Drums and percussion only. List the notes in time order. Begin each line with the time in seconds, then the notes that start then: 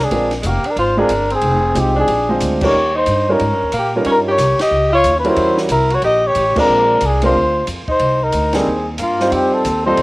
0.11 kick, ride
0.31 snare, ride
0.43 kick, hi-hat pedal, ride
0.64 ride
0.77 kick, ride
1.09 kick, hi-hat pedal, ride
1.30 ride
1.41 kick, ride
1.75 kick, hi-hat pedal, ride
2.08 kick, ride
2.40 kick, hi-hat pedal, ride
2.61 kick, crash
3.06 kick, hi-hat pedal, ride
3.40 kick, ride
3.72 kick, hi-hat pedal, ride
4.05 kick, ride
4.38 kick, snare, hi-hat pedal, ride
4.59 snare, ride
5.04 kick, hi-hat pedal, ride
5.24 ride
5.36 kick, ride
5.57 snare
5.69 kick, hi-hat pedal, ride
5.90 ride
6.02 kick, ride
6.35 kick, hi-hat pedal, ride
6.56 kick, crash
7.01 kick, hi-hat pedal, ride
7.22 ride
7.34 kick
7.67 kick, hi-hat pedal, ride
7.88 kick
8.00 kick, ride
8.32 kick, hi-hat pedal, ride
8.53 snare, ride
8.98 kick, hi-hat pedal, ride
9.20 snare
9.32 kick, ride
9.65 kick, hi-hat pedal, ride
9.97 kick, ride